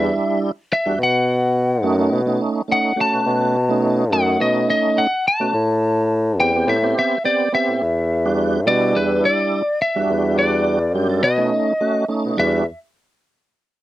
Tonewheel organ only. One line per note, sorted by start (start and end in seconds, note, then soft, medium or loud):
0.00 0.51 G3 medium
0.00 0.51 D4 medium
0.00 0.52 E4 medium
0.86 0.99 G3 medium
0.86 0.99 D4 medium
0.86 0.99 F#4 medium
1.83 1.96 A3 medium
1.83 1.96 C#4 medium
1.83 1.97 D#4 loud
1.98 2.22 A3 medium
1.98 2.22 C#4 medium
1.98 2.22 D#4 loud
2.26 2.62 A3 medium
2.26 2.62 C#4 medium
2.26 2.62 D#4 medium
2.68 2.93 A3 medium
2.68 2.93 C#4 medium
2.68 2.93 D#4 medium
2.96 3.56 A3 medium
2.96 3.57 C#4 medium
2.96 3.57 F#4 medium
3.69 4.04 A3 medium
3.69 4.05 C#4 medium
3.69 4.05 D#4 loud
4.12 5.07 A3 medium
4.12 5.07 C#4 medium
4.12 5.07 D#4 medium
5.40 5.53 A3 medium
5.40 5.54 C#4 medium
5.40 5.54 F#4 medium
6.40 6.53 B3 medium
6.40 6.52 C4 medium
6.40 6.53 G4 medium
6.55 6.78 B3 medium
6.55 6.78 C4 medium
6.55 6.79 G4 medium
6.82 7.18 B3 medium
6.82 7.18 C4 medium
6.82 7.18 G4 medium
7.24 7.49 B3 medium
7.24 7.49 C4 medium
7.24 7.49 G4 medium
7.52 7.81 B3 medium
7.52 7.82 C4 medium
7.52 7.82 G4 medium
8.25 8.60 G3 medium
8.25 8.61 D4 medium
8.25 8.61 F#4 medium
8.66 9.62 G3 medium
8.66 9.62 D4 medium
8.66 9.63 E4 medium
9.96 10.79 G3 medium
9.96 10.79 D4 medium
9.96 10.79 F#4 medium
10.94 11.07 G3 medium
10.94 11.08 D4 medium
10.94 11.08 G4 medium
11.08 11.22 G3 medium
11.08 11.23 D4 medium
11.08 11.23 A4 medium
11.37 11.73 A3 medium
11.37 11.73 C#4 medium
11.37 11.74 D#4 medium
11.81 12.05 A3 medium
11.81 12.05 C#4 medium
11.81 12.05 F#4 medium
12.08 12.37 A3 medium
12.08 12.37 C#4 medium
12.08 12.38 D#4 medium
12.37 12.64 G3 medium
12.37 12.64 D4 medium
12.37 12.64 F#4 medium